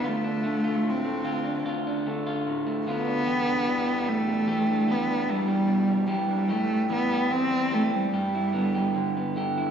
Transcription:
<<
  \new Staff \with { instrumentName = "Cello" } { \time 4/4 \key d \dorian \tempo 4 = 74 a4 c'4 r4. b8~ | b4 a4 b8 g4 g8 | a8 b8 c'8 a16 g4.~ g16 r8 | }
  \new Staff \with { instrumentName = "Clean electric guitar" } { \time 4/4 \key d \dorian << { f'16 d'16 a16 f'8 a16 f'16 d'16 f'16 d'16 a16 f'8 a16 f'16 d'16 | g'16 d'16 g16 g'8 g16 g'16 d'16 g'16 d'16 g16 g'8 g16 g'16 d'16 | g'8 g16 g'8 g16 g'16 c'16 g'16 e'16 b16 g'8 b16 g'16 e'16 | } \\ { d,8 d8 a,8 d8 d,8 d8 a,8 d8 | e,8 e8 b,8 e8 e,8 e8 b,8 e8 | a,8 e8 e,8 e8 g,8 d8 d8 d8 | } >> }
>>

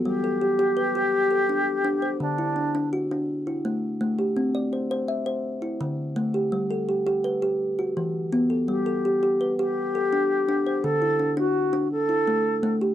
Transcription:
<<
  \new Staff \with { instrumentName = "Flute" } { \time 12/8 \key g \major \tempo 4. = 111 g'1. | d'2 r1 | r1. | r1. |
g'2~ g'8 g'2.~ g'8 | a'4. fis'4. a'2~ a'8 r8 | }
  \new Staff \with { instrumentName = "Kalimba" } { \time 12/8 \key g \major << { <fis' a'>8 a'8 g'4 b'4. a'4. r8 c''8~ | c''8 e'8 d'4 fis'4. e'4. r8 g'8~ | g'8 d''8 c''4 e''4. e'4. r8 g'8~ | g'8 a'8 g'4 b'4. fis'4. r8 a'8~ |
a'8 a'8 g'4 b'4. a'4. r8 c''8~ | c''8 e'8 d'4. r4 e'4. r8 g'8 | } \\ { g4 r8 g'4 g'4 r8 d'4 d'4 | d4 r8 d'4 d'4 r8 a4 a4 | c'4 r8 c''4 c''8 r4 d4 a4 | g4 r8 g'4 g'8 r4 e4 b4 |
g4 r8 g'4 g'4 r8 d'4 d'4 | d4 r8 d'4 d'4 r8 a4 a4 | } >> }
>>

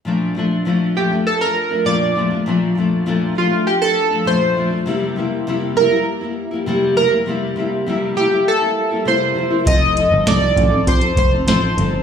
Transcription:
<<
  \new Staff \with { instrumentName = "Synth keys" } { \time 4/4 \key bes \major \tempo 4 = 100 r4. g'8 a'16 bes'8. d''8. r16 | r4. f'8 g'16 a'8. c''8. r16 | r4. bes'8 r4. bes'8 | r4. g'8 a'4 c''4 |
ees''4 d''4 c''8 c''8 c''4 | }
  \new Staff \with { instrumentName = "Nylon-string guitar" } { \time 4/4 \key bes \major <bes, f a d'>8 <bes, f a d'>8 <bes, f a d'>8 <bes, f a d'>16 <f a d'>8 <f d'>8 <f a d'>16 <bes, f a d'>8 <bes, f a d'>16 <f a d'>16 | <bes, f a d'>8 <bes, f a d'>8 <bes, f a d'>8 <bes, f a d'>16 <f a d'>8 <f a d'>8 <f a d'>16 <bes, f a d'>8 <bes, f a d'>16 <f a d'>16 | <c g bes e'>8 <c g bes e'>8 <c g bes e'>8 <c g bes e'>16 <g bes e'>8 <g bes e'>8 <g bes e'>16 <c g bes e'>8 <c g bes e'>16 <g bes e'>16 | <c g bes e'>8 <c g bes e'>8 <c g bes e'>8 <c g bes e'>16 <g bes e'>8 <g bes e'>8 <g bes e'>16 <c g bes e'>8 <c g bes e'>16 <g bes e'>16 |
<f c' ees' a'>8 <f c' ees' a'>8 <f c' ees' a'>8 <f c' ees' a'>16 <c' ees' a'>8 <c' ees' a'>8 <c' ees' a'>16 <f c' ees' a'>8 <f c' ees' a'>16 <c' ees' a'>16 | }
  \new Staff \with { instrumentName = "Picked electric bass" } { \clef bass \time 4/4 \key bes \major r1 | r1 | r1 | r1 |
f,,8. g,,16 c,8 a,,8 f,8 f,,8 a,,8 g,,8 | }
  \new DrumStaff \with { instrumentName = "Drums" } \drummode { \time 4/4 r4 r4 r4 r4 | r4 r4 r4 r4 | r4 r4 r4 r4 | r4 r4 r4 r4 |
<hh bd>8 hh8 <hh sn>8 <hh bd>8 <hh bd>16 hh16 <hh bd>8 <hh sn>8 hh8 | }
>>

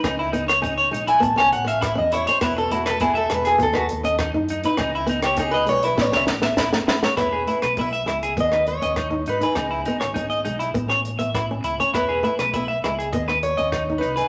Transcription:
<<
  \new Staff \with { instrumentName = "Steel-string acoustic guitar" } { \time 4/4 \key e \major \tempo 4 = 101 r4. r16 gis''16 a''16 gis''16 fis''16 f''16 e''16 dis''16 cis''16 c''16 | b'16 a'16 fis'16 a'16 gis'16 a'16 b'16 gis'16 a'16 fis'16 r4. | r8. g'16 gis'16 b'16 cis''16 b'16 cis''16 e''16 r4. | b'4 e''4 dis''8 cis''4 b'16 gis'16~ |
gis'4.~ gis'16 r2 r16 | b'4 e''4 dis''8 cis''4 b'16 gis'16 | }
  \new Staff \with { instrumentName = "Clean electric guitar" } { \time 4/4 \key e \major dis'16 e'16 dis'16 cis''16 dis'16 cis''16 dis'16 e'16 r16 cis''16 r16 e''16 e'16 r16 e'16 cis''16 | e'16 r16 e'16 b'16 e'16 e''16 r16 gis'16 r16 b'16 r16 dis''16 dis'16 r16 dis'16 b'16 | dis'16 e'16 dis'16 cis''16 dis'16 dis''16 r16 e'16 r16 cis''16 r16 e''16 e'16 r16 e'16 cis''16 | e'16 gis'16 e'16 b'16 e'16 e''16 e'16 gis'16 r16 b'16 r16 dis''16 dis'16 r16 dis'16 b'16 |
dis'16 e'16 dis'16 cis''16 dis'16 dis''16 dis'16 e'16 r16 cis''16 r16 e''16 e'16 r16 e'16 cis''16 | e'16 gis'16 e'16 b'16 e'16 e''16 e'16 gis'16 r16 b'16 r16 dis''16 dis'16 r16 dis'16 b'16 | }
  \new Staff \with { instrumentName = "Nylon-string guitar" } { \time 4/4 \key e \major cis'8 b8 cis'8 gis8 b16 cis'8 r8 cis'8 cis'16 | b8 a8 b8 gis8 b16 r8 cis'8 dis'8 dis'16 | cis'8 b8 cis'8 gis8 b16 cis'8 b8 a8 a16 | b8 a8 b8 gis8 b16 dis'8 cis'8 dis'8 dis'16 |
cis'8 b8 cis'8 gis8 b16 cis'8 b8 cis'8 cis'16 | b8 a8 b8 gis8 b16 r8 cis'8 dis'8 dis'16 | }
  \new Staff \with { instrumentName = "Fingered electric bass" } { \clef bass \time 4/4 \key e \major cis,4. ais,,8 a,,16 cis,16 a,,8. e,8 r16 | e,,4. e,,8 dis,16 dis,16 dis,8. fis,8 r16 | cis,4. b,,8 a,,16 cis,16 a,,8. fis,,8 r16 | e,,8 r16 b,,8. cis,8 dis,8. dis,8. gis,16 r16 |
cis,8 r16 gis,,8. b,,8 a,,8. a,,8. cis,16 r16 | e,,8 r16 b,,8. cis,8 dis,8. dis,8. c,16 r16 | }
  \new DrumStaff \with { instrumentName = "Drums" } \drummode { \time 4/4 <hh bd ss>8 hh16 <hh ss>16 <hh bd>8 hh16 hh16 <hh bd>16 ss16 hh16 hh16 <hh bd ss>8 hh16 hh16 | <hh bd ss>8 hh16 <hh ss>16 <hh bd>8 <hh ss>16 hh16 <hh bd>16 ss16 hh16 hh16 <hh bd ss>8 hh16 hh16 | <hh bd ss>8 hh16 <hh ss>16 <hh bd>8 hh16 hh16 <bd sn>16 sn16 sn16 sn16 <bd sn>16 sn16 sn16 sn16 | <hh bd ss>8 hh16 <hh ss>16 <hh bd>8 <hh ss>16 hh16 <hh bd>16 ss16 hh16 hh16 <hh bd ss>8 hh16 hh16 |
<hh bd ss>8 hh16 <hh ss>16 <hh bd>8 hh16 hh16 <hh bd>16 ss16 hh16 hh16 <hh bd ss>8 hh16 hh16 | <hh bd ss>8 hh16 <hh ss>16 <hh bd>8 <hh ss>16 hh16 <hh bd>16 ss16 hh16 hh16 <hh bd ss>8 hh16 hh16 | }
>>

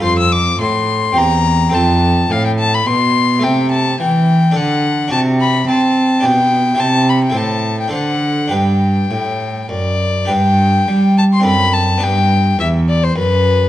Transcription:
<<
  \new Staff \with { instrumentName = "Violin" } { \time 3/4 \key f \lydian \tempo 4 = 106 c'''16 e'''16 d'''8 c'''4 bes''4 | a''4 f''16 g''16 a''16 b''16 c'''4 | \key g \major g''8 a''8 g''4 fis''4 | a''8 b''8 a''4 g''4 |
a''8 b''16 g''16 a''8. g''16 fis''4 | g''2 d''4 | g''4. a''16 c'''16 b''8 a''8 | g''4 e''8 d''16 c''16 b'4 | }
  \new Staff \with { instrumentName = "Harpsichord" } { \time 3/4 \key f \lydian <f' a' c''>2 <c' g' c''>4 | <c' a' c''>2. | \key g \major <a a' e''>2 <d' a' d''>4 | <d' fis' d''>2 <d' g' d''>4 |
<e' g' c''>4 <e' a' c''>4 <d' a' c''>4 | <d' g' b'>2. | <d' g' b'>2 <c' d' a'>4 | <b d' b'>2. | }
  \new Staff \with { instrumentName = "Harpsichord" } { \clef bass \time 3/4 \key f \lydian f,4 a,4 e,4 | f,4 a,4 b,4 | \key g \major c4 e4 d4 | c4 c'4 b,4 |
c4 a,4 d4 | g,4 a,4 fis,4 | g,4 g4 fis,4 | g,4 e,4 fis,4 | }
  \new Staff \with { instrumentName = "Cello" } { \clef bass \time 3/4 \key f \lydian f,4 a,4 e,4 | f,4 a,4 b,4 | \key g \major c4 e4 d4 | c4 c'4 b,4 |
c4 a,4 d4 | g,4 a,4 fis,4 | g,4 g4 fis,4 | g,4 e,4 fis,4 | }
>>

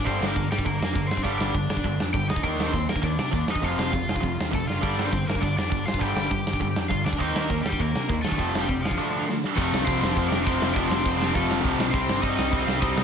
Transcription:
<<
  \new Staff \with { instrumentName = "Overdriven electric guitar" } { \time 4/4 \key f \mixolydian \tempo 4 = 202 <c' c''>8. <bes bes'>8. <g g'>8 <bes bes'>8 <bes bes'>4 <c' c''>8 | <d' d''>8 <d' d''>2~ <d' d''>8 <g' g''>8 <ees' ees''>8 | <d' d''>8. <c' c''>8. <bes bes'>8 <d' d''>8 <d' d''>4 <ees' ees''>8 | <f' f''>8 <f' f''>2~ <f' f''>8 <a' a''>8 <f' f''>8 |
<d' d''>8. <c' c''>8. <bes bes'>8 <d' d''>8 <d' d''>4 <f' f''>8 | <g' g''>8 <g' g''>2~ <g' g''>8 <f' f''>8 <d' d''>8 | <c' c''>8. <bes bes'>8. <g g'>16 <g g'>16 <bes bes'>4. <a a'>8~ | <a a'>8. <g g'>8. <f f'>2 r8 |
<a a'>4 <c' c''>8 <c' c''>4 <d' d''>8 <c' c''>4 | <d' d''>8 <c' c''>4 <c' c''>8 <a a'>4 r4 | <c' c''>4 <ees' ees''>8 <ees' ees''>4 <f' f''>8 <ees' ees''>4 | }
  \new Staff \with { instrumentName = "Distorted electric guitar" } { \clef bass \time 4/4 \key f \mixolydian <g, d g>4 <g, d>8 r8 <g, d>8 r8 <g, d>8 r8 | <g, d g>4 <g, d>8 r8 <g, d>8 r8 <g, d>8 r8 | <ees bes ees'>4 <ees bes>8 r8 <ees bes>8 r8 <ees bes>8 r8 | <f, c f>4 <f, c>8 r8 <f, c>8 r8 <f, c>8 r8 |
<g, d g>4 <g, d>8 r8 <g, d>8 r8 <g, d>8 r8 | <g, d g>4 <g, d>8 r8 <g, d>8 r8 <g, d>8 r8 | <ees bes ees'>4 <ees bes>8 r8 <ees bes>8 r8 <ees bes>8 r8 | <f, c f>4 <f, c>8 r8 <d a d'>4 <d a>8 r8 |
<f, c f>4 <f, c f>4 <f, c f>4 <f, c f>4 | <f, c f>4 <f, c f>4 <f, c f>4 <f, c f>4 | <c g c'>4 <c g c'>4 <c g c'>4 <c g c'>4 | }
  \new Staff \with { instrumentName = "Distorted electric guitar" } { \clef bass \time 4/4 \key f \mixolydian <g, d g>4 <g, d>8 r8 <g, d>8 r8 <g, d>8 r8 | <g, d g>4 <g, d>8 r8 <g, d>8 r8 <g, d>8 r8 | <ees bes ees'>4 <ees bes>8 r8 <ees bes>8 r8 <ees bes>8 r8 | <f, c f>4 <f, c>8 r8 <f, c>8 r8 <f, c>8 r8 |
<g, d g>4 <g, d>8 r8 <g, d>8 r8 <g, d>8 r8 | <g, d g>4 <g, d>8 r8 <g, d>8 r8 <g, d>8 r8 | <ees bes ees'>4 <ees bes>8 r8 <ees bes>8 r8 <ees bes>8 r8 | <f, c f>4 <f, c>8 r8 <d a d'>4 <d a>8 r8 |
<f, c f>4 <f, c f>4 <f, c f>4 <f, c f>4 | <f, c f>4 <f, c f>4 <f, c f>4 <f, c f>4 | <c g c'>4 <c g c'>4 <c g c'>4 <c g c'>4 | }
  \new Staff \with { instrumentName = "Distorted electric guitar" } { \clef bass \time 4/4 \key f \mixolydian r1 | r1 | r1 | r1 |
r1 | r1 | r1 | r1 |
<f, c f>2~ <f, c f>8 <f, c f>8 <f, c f>4 | <f, c f>2~ <f, c f>8 <f, c f>8 <f, c f>4 | <c g c'>2~ <c g c'>8 <c g c'>8 <c g c'>4 | }
  \new Staff \with { instrumentName = "Picked electric bass" } { \clef bass \time 4/4 \key f \mixolydian g,,8 g,,8 g,,8 g,,8 g,,8 f,8 g,,8 g,8 | g,,8 g,,8 g,,8 g,,8 g,,8 f,8 g,,8 d,8 | ees,8 ees,8 ees,8 ees,8 ees,8 c8 ees,8 e,8 | f,,8 f,,8 f,,8 f,,8 f,,8 ees,8 f,,8 fis,,8 |
g,,8 g,,8 g,,8 g,,8 g,,8 f,8 g,,8 g,8 | g,,8 g,,8 g,,8 g,,8 g,,8 f,8 g,,8 d,8 | ees,8 ees,8 ees,8 ees,8 ees,8 c8 ees,8 ees8 | f,,8 f,,8 f,,8 f,,8 r2 |
f,,8 c,8 c,8 f,,8 f,,8 f,,8 f,,8 f,,8 | f,,8 f,,8 f,,4 f,,4 c,8 b,,8 | c,8 g,,8 g,8 c,8 c,8 c,8 c,8 c,8 | }
  \new DrumStaff \with { instrumentName = "Drums" } \drummode { \time 4/4 <hho bd>8 sn8 <hho bd>8 sn16 bd16 <hho bd>8 sn8 <hho bd>8 sn16 bd16 | <hho bd>8 sn8 <hho bd>8 sn16 bd16 <hho bd>8 sn8 <hho bd>8 sn16 bd16 | <hho bd>8 sn8 <hho bd>8 sn16 bd16 <hho bd>8 sn8 <hho bd>8 sn16 bd16 | <hho bd>8 sn8 <hho bd>8 sn16 bd16 <hho bd>8 sn8 <bd sn>8 sn8 |
<hho bd>8 sn8 <hho bd>8 sn16 bd16 <hho bd>8 sn8 <hho bd>8 sn16 bd16 | <hho bd>8 sn8 <hho bd>8 sn16 bd16 <hho bd>8 sn8 <hho bd>8 sn16 bd16 | <hho bd>8 sn8 <hho bd>8 sn16 bd16 <hho bd>8 sn8 <hho bd>8 sn16 bd16 | <hho bd>8 sn8 <hho bd>8 sn16 bd16 r4 sn8 sn8 |
<cymc bd>8 sn8 <cymc bd>8 sn8 <cymc bd>8 sn8 <cymc bd>8 sn8 | <cymc bd>8 sn8 <cymc bd>8 sn8 <cymc bd>8 sn8 <cymc bd>8 sn8 | <cymc bd>8 sn8 <cymc bd>8 sn8 <cymc bd>8 sn8 <cymc bd>8 sn8 | }
>>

